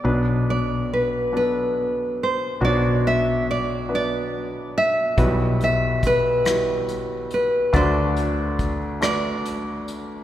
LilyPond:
<<
  \new Staff \with { instrumentName = "Nylon-string guitar" } { \time 6/8 \key b \phrygian \tempo 4. = 47 d''8 d''8 b'8 b'4 c''8 | d''8 e''8 d''8 d''4 e''8~ | e''8 e''8 b'4. b'8 | c''4 r8 d''4 r8 | }
  \new Staff \with { instrumentName = "Grand piano" } { \time 6/8 \key b \phrygian <fis b d' b'>4 r8 <fis b d' a'>4 r8 | <fis b d' fis'>4 r8 <fis b d' b'>4 r8 | <g e' fis' b'>4 r8 <g e' fis' b'>4 r8 | <a d' fis' d''>4 r8 <a d' fis' b'>4 r8 | }
  \new Staff \with { instrumentName = "Grand piano" } { \clef bass \time 6/8 \key b \phrygian <b,, b,>2. | <b,, b,>2. | <b,, b,>2. | <d, d>2. | }
  \new Staff \with { instrumentName = "Fretless electric bass" } { \clef bass \time 6/8 \key b \phrygian b,,2. | b,,2. | b,,2. | d,2. | }
  \new DrumStaff \with { instrumentName = "Drums" } \drummode { \time 6/8 r4. r4. | r4. r4. | <hh bd>8 hh8 <hh bd>8 <hh ss>8 hh8 hh8 | <hh bd>8 hh8 <hh bd>8 <hh ss>8 hh8 hh8 | }
>>